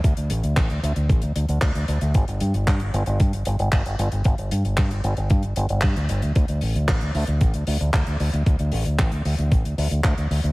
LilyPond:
<<
  \new Staff \with { instrumentName = "Fingered electric bass" } { \clef bass \time 4/4 \key d \dorian \tempo 4 = 114 d,16 d,16 a,,16 d,16 a,,16 d,16 d,16 d,16 a,,16 d,16 d,16 d,16 d,16 d,16 d,16 d,16 | g,,16 g,,16 g,16 g,,16 g,16 g,,16 g,,16 g,,16 g,16 g,,16 g,,16 g,,16 g,,16 g,,16 g,,16 g,,16 | g,,16 g,,16 g,16 g,,16 g,16 g,,16 g,,16 g,,16 g,16 g,,16 g,,16 g,,16 g,16 d,16 g,,16 d,16 | d,16 d,16 a,,16 d,16 a,,16 d,16 d,16 d,16 a,,16 d,16 d,16 d,16 d,16 d,16 d,16 d,16 |
d,16 d,16 a,,16 d,16 a,,16 d,16 d,16 d,16 a,,16 d,16 d,16 d,16 d,16 d,16 d,16 d,16 | }
  \new DrumStaff \with { instrumentName = "Drums" } \drummode { \time 4/4 <hh bd>16 hh16 hh16 hh16 <hc hh bd>16 hh16 hh16 hh16 <hh bd>16 hh16 hh16 hh16 <hc hh bd>16 hh16 hh16 hh16 | <hh bd>16 hh16 hh16 hh16 <hc hh bd>16 hh16 hh16 hh16 <hh bd>16 hh16 hh16 hh16 <hc hh bd>16 hh16 hh16 hh16 | <hh bd>16 hh16 hh16 hh16 <hc hh bd>16 hh16 hh16 hh16 <hh bd>16 hh16 hh16 hh16 <hc hh bd>16 hh16 hh16 hh16 | <hh bd>16 hh16 hho16 hh16 <hc hh bd>16 hh16 hho16 hh16 <hh bd>16 hh16 hho16 hh16 <hc hh bd>16 hh16 hho16 hh16 |
<hh bd>16 hh16 hho16 hh16 <hc hh bd>16 hh16 hho16 hh16 <hh bd>16 hh16 hho16 hh16 <hc hh bd>16 hh16 hho16 hh16 | }
>>